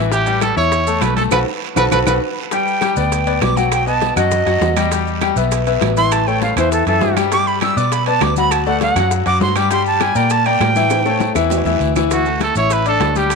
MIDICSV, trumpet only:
0, 0, Header, 1, 2, 480
1, 0, Start_track
1, 0, Key_signature, 2, "major"
1, 0, Tempo, 299700
1, 191, Time_signature, 4, 2, 24, 8
1, 21385, End_track
2, 0, Start_track
2, 0, Title_t, "Trumpet"
2, 0, Program_c, 0, 56
2, 195, Note_on_c, 0, 67, 106
2, 640, Note_off_c, 0, 67, 0
2, 672, Note_on_c, 0, 69, 100
2, 895, Note_off_c, 0, 69, 0
2, 918, Note_on_c, 0, 73, 103
2, 1625, Note_on_c, 0, 71, 92
2, 1649, Note_off_c, 0, 73, 0
2, 1852, Note_off_c, 0, 71, 0
2, 1861, Note_on_c, 0, 69, 93
2, 1972, Note_off_c, 0, 69, 0
2, 2106, Note_on_c, 0, 71, 98
2, 2224, Note_off_c, 0, 71, 0
2, 2836, Note_on_c, 0, 71, 98
2, 2951, Note_off_c, 0, 71, 0
2, 3071, Note_on_c, 0, 71, 96
2, 3188, Note_off_c, 0, 71, 0
2, 3308, Note_on_c, 0, 71, 84
2, 3425, Note_off_c, 0, 71, 0
2, 19423, Note_on_c, 0, 66, 96
2, 19855, Note_off_c, 0, 66, 0
2, 19902, Note_on_c, 0, 69, 98
2, 20111, Note_off_c, 0, 69, 0
2, 20134, Note_on_c, 0, 73, 105
2, 20381, Note_on_c, 0, 71, 95
2, 20405, Note_off_c, 0, 73, 0
2, 20606, Note_off_c, 0, 71, 0
2, 20632, Note_on_c, 0, 69, 94
2, 21097, Note_on_c, 0, 67, 97
2, 21121, Note_off_c, 0, 69, 0
2, 21385, Note_off_c, 0, 67, 0
2, 21385, End_track
0, 0, End_of_file